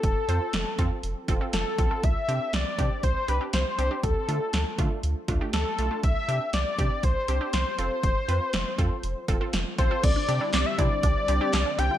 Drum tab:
CC |--------|--------|--------|--------|
HH |xxxxxxxx|xxxxxxxx|xxxxxxxx|xxxxxxxx|
CP |--------|--------|--------|--------|
SD |--o---o-|--o---o-|--o---o-|--o---o-|
BD |o--o-o-o|o--oo---|o--o-o--|o--oo---|

CC |--------|x-------|
HH |xxxxxxxx|xxxxxxxx|
CP |--------|--x---x-|
SD |--o---o-|--o---o-|
BD |o--o-o-o|o--oo---|